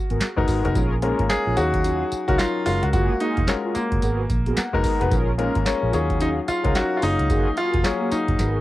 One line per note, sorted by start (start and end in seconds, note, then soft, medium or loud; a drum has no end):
0.00 0.44 F#4 medium
0.10 0.19 G#1 medium
0.10 0.24 B3 medium
0.10 0.24 F#4 medium
0.10 0.24 G#4 medium
0.10 0.24 A#4 medium
0.10 closed hi-hat medium
0.20 snare loud
0.20 clap medium
0.20 closed hi-hat medium
0.20 tambourine medium
0.36 0.46 F#1 medium
0.36 0.59 G#3 loud
0.36 0.59 B3 medium
0.36 0.59 D#4 medium
0.36 0.59 F#4 medium
0.36 0.59 A#4 loud
0.36 kick loud
0.48 0.62 G#1 medium
0.48 0.67 B3 medium
0.48 0.67 F#4 medium
0.48 0.67 G#4 medium
0.48 0.67 A#4 medium
0.48 kick medium
0.48 open hi-hat medium
0.48 tambourine medium
0.64 0.74 F1 loud
0.64 0.75 G#3 medium
0.64 0.75 B3 medium
0.64 0.75 D#4 medium
0.64 0.75 F#4 medium
0.64 0.75 A#4 loud
0.64 closed hi-hat medium
0.75 1.12 A#1 loud
0.75 0.94 C#4 medium
0.75 0.94 F4 medium
0.75 0.94 G#4 medium
0.75 0.94 A#4 loud
0.75 kick loud
0.75 closed hi-hat medium
0.75 tambourine medium
1.02 1.26 G#3 medium
1.02 1.26 A#3 medium
1.02 1.21 C#4 medium
1.02 1.26 C#4 medium
1.02 1.22 F4 medium
1.02 1.26 F4 medium
1.02 1.22 G#4 medium
1.02 1.22 A#4 medium
1.02 1.27 A#4 medium
1.02 closed hi-hat medium
1.19 1.28 G#1 medium
1.19 kick medium
1.19 closed hi-hat soft
1.29 1.53 G#3 medium
1.29 1.53 A#3 medium
1.29 1.53 C#4 medium
1.29 1.54 F4 medium
1.29 1.58 G#4 loud
1.29 1.54 A#4 medium
1.29 snare loud
1.29 clap medium
1.29 closed hi-hat medium
1.29 tambourine medium
1.46 1.56 A#1 medium
1.46 1.60 C#4 medium
1.46 1.61 F4 medium
1.46 1.61 G#4 medium
1.46 1.61 A#4 medium
1.57 2.02 D#2 loud
1.57 2.14 F#3 medium
1.57 2.14 C#4 medium
1.57 2.14 D#4 medium
1.57 2.26 F#4 loud
1.57 2.15 G#4 medium
1.57 2.15 F5 medium
1.57 closed hi-hat medium
1.57 tambourine medium
1.74 kick medium
1.74 closed hi-hat medium
1.84 2.03 C#4 medium
1.84 2.03 F4 medium
1.84 2.04 F#4 medium
1.84 2.04 G#4 medium
1.84 closed hi-hat medium
1.84 tambourine medium
2.12 muted fingered electric bass stroke soft
2.12 closed hi-hat medium
2.12 tambourine medium
2.28 2.37 C#2 medium
2.28 2.61 F#3 medium
2.28 2.42 C#4 medium
2.28 2.61 C#4 medium
2.28 2.61 D#4 medium
2.28 2.42 F4 medium
2.28 2.61 F4 medium
2.28 2.39 F#4 loud
2.28 2.43 F#4 medium
2.28 2.43 G#4 medium
2.28 2.61 A#4 loud
2.28 kick loud
2.28 closed hi-hat medium
2.38 2.64 F4 loud
2.38 snare loud
2.38 clap medium
2.38 closed hi-hat medium
2.38 tambourine loud
2.66 2.80 F#1 loud
2.66 3.37 G#3 medium
2.66 3.37 C#4 medium
2.66 2.82 F4 loud
2.66 3.37 F4 medium
2.66 3.38 F#4 medium
2.66 3.38 A#4 medium
2.66 open hi-hat medium
2.66 tambourine medium
2.83 2.92 C#2 medium
2.83 2.87 F#4 loud
2.83 closed hi-hat medium
2.93 3.07 F#1 loud
2.93 3.12 A#3 loud
2.93 3.12 F4 medium
2.93 3.21 F#4 loud
2.93 3.12 F#4 medium
2.93 3.13 G#4 loud
2.93 kick loud
2.93 closed hi-hat medium
2.93 tambourine medium
3.20 3.40 A#3 medium
3.20 3.49 D#4 loud
3.20 3.40 F4 medium
3.20 3.40 F#4 medium
3.20 3.40 G#4 medium
3.20 closed hi-hat medium
3.37 3.46 F1 medium
3.37 kick medium
3.37 closed hi-hat soft
3.47 4.03 G#3 medium
3.47 3.54 C#4 medium
3.47 4.03 C#4 medium
3.47 4.03 F4 medium
3.47 4.03 F#4 medium
3.47 4.03 A#4 medium
3.47 snare loud
3.47 clap medium
3.47 closed hi-hat medium
3.47 tambourine medium
3.64 3.79 A#3 medium
3.64 3.79 F4 medium
3.64 3.79 F#4 medium
3.64 3.79 G#4 medium
3.75 4.80 A#3 medium
3.75 muted fingered electric bass stroke medium
3.75 closed hi-hat medium
3.75 tambourine medium
3.92 4.01 F#1 medium
3.92 kick loud
3.92 closed hi-hat medium
4.02 4.25 G#1 medium
4.02 4.21 B3 medium
4.02 4.21 F#4 medium
4.02 4.21 G#4 medium
4.02 4.22 A#4 medium
4.02 closed hi-hat medium
4.02 tambourine medium
4.30 4.52 A#1 loud
4.30 kick loud
4.30 closed hi-hat medium
4.30 tambourine medium
4.46 4.60 B3 medium
4.46 4.61 F#4 medium
4.46 4.61 G#4 medium
4.46 4.61 A#4 medium
4.46 closed hi-hat medium
4.57 4.82 F#5 medium
4.57 muted fingered electric bass stroke medium
4.57 snare loud
4.57 clap medium
4.57 closed hi-hat medium
4.57 tambourine medium
4.73 4.83 F#1 medium
4.73 4.95 G#3 loud
4.73 4.95 B3 medium
4.73 4.95 D#4 medium
4.73 4.96 F#4 loud
4.73 4.96 A#4 loud
4.73 kick medium
4.84 5.03 B3 medium
4.84 5.03 F#4 medium
4.84 5.03 G#4 medium
4.84 5.03 A#4 medium
4.84 5.10 A#5 medium
4.84 kick loud
4.84 open hi-hat medium
4.84 tambourine medium
5.00 5.10 F1 medium
5.00 5.11 G#3 medium
5.00 5.11 B3 medium
5.00 5.12 D#4 medium
5.00 5.12 F#4 medium
5.00 5.12 B4 loud
5.00 closed hi-hat medium
5.11 5.48 A#1 loud
5.11 5.30 C#4 loud
5.11 5.31 F4 medium
5.11 5.31 G#4 medium
5.11 5.31 A#4 loud
5.11 kick loud
5.11 closed hi-hat medium
5.11 tambourine medium
5.38 5.62 G#3 medium
5.38 5.62 A#3 medium
5.38 5.58 C#4 medium
5.38 5.62 C#4 medium
5.38 5.58 F4 medium
5.38 5.63 F4 medium
5.38 5.58 G#4 medium
5.38 5.58 A#4 medium
5.38 5.63 A#4 loud
5.38 closed hi-hat medium
5.55 5.65 G#1 medium
5.55 kick medium
5.55 closed hi-hat medium
5.65 5.89 G#3 medium
5.65 5.90 A#3 medium
5.65 5.90 C#4 medium
5.65 5.92 C#4 medium
5.65 5.90 F4 medium
5.65 5.90 A#4 medium
5.65 snare loud
5.65 clap loud
5.65 closed hi-hat medium
5.65 tambourine medium
5.82 5.92 A#1 medium
5.82 5.97 C#4 medium
5.82 5.97 F4 medium
5.82 5.97 G#4 medium
5.82 5.97 A#4 medium
5.92 6.39 D#2 loud
5.92 6.50 F#3 medium
5.92 6.50 C#4 medium
5.92 6.22 C#4 medium
5.92 6.50 D#4 medium
5.92 6.51 F4 medium
5.92 6.51 G#4 loud
5.92 closed hi-hat medium
5.92 tambourine medium
6.10 kick medium
6.10 closed hi-hat medium
6.20 6.39 C#4 medium
6.20 6.28 D#4 loud
6.20 6.40 F4 medium
6.20 6.40 F#4 medium
6.20 6.40 G#4 medium
6.20 closed hi-hat loud
6.20 tambourine medium
6.48 6.76 F4 loud
6.48 muted fingered electric bass stroke soft
6.48 closed hi-hat medium
6.48 tambourine medium
6.64 6.74 C#2 medium
6.64 6.97 F#3 medium
6.64 6.97 C#4 medium
6.64 6.79 C#4 medium
6.64 6.97 D#4 medium
6.64 6.97 F4 medium
6.64 6.79 F4 medium
6.64 6.79 F#4 medium
6.64 6.79 G#4 medium
6.64 6.97 A#4 medium
6.64 kick loud
6.64 closed hi-hat medium
6.75 6.98 F#4 loud
6.75 snare loud
6.75 clap medium
6.75 closed hi-hat medium
6.75 tambourine loud
6.97 7.02 F4 medium
7.02 7.17 F#1 loud
7.02 7.73 F#3 medium
7.02 7.73 A#3 medium
7.02 7.74 C#4 medium
7.02 7.54 D#4 loud
7.02 7.74 F4 medium
7.02 7.74 G#4 medium
7.02 open hi-hat medium
7.02 tambourine medium
7.19 7.28 C#2 medium
7.19 closed hi-hat medium
7.29 7.44 F#1 loud
7.29 7.49 A#3 medium
7.29 7.49 F4 medium
7.29 7.49 F#4 medium
7.29 7.49 G#4 loud
7.29 kick loud
7.29 closed hi-hat medium
7.29 tambourine medium
7.57 7.76 A#3 medium
7.57 7.76 F4 medium
7.57 7.85 F4 loud
7.57 7.76 F#4 medium
7.57 7.76 G#4 medium
7.57 closed hi-hat medium
7.74 7.83 F1 loud
7.74 kick loud
7.74 closed hi-hat medium
7.84 8.39 F#3 medium
7.84 8.39 A#3 medium
7.84 8.39 C#4 medium
7.84 8.13 C#4 loud
7.84 8.39 F4 medium
7.84 8.39 G#4 medium
7.84 snare loud
7.84 clap loud
7.84 closed hi-hat medium
7.84 tambourine medium
8.01 8.15 A#3 medium
8.01 8.15 F4 medium
8.01 8.15 F#4 medium
8.01 8.15 G#4 medium
8.12 8.61 D#4 loud
8.12 muted fingered electric bass stroke soft
8.12 closed hi-hat medium
8.12 tambourine medium
8.28 8.37 F#1 loud
8.28 kick medium
8.28 closed hi-hat medium
8.39 8.61 G#1 loud
8.39 8.58 B3 medium
8.39 8.58 F#4 medium
8.39 8.58 G#4 medium
8.39 8.58 A#4 medium
8.39 snare medium
8.39 closed hi-hat medium
8.39 tambourine medium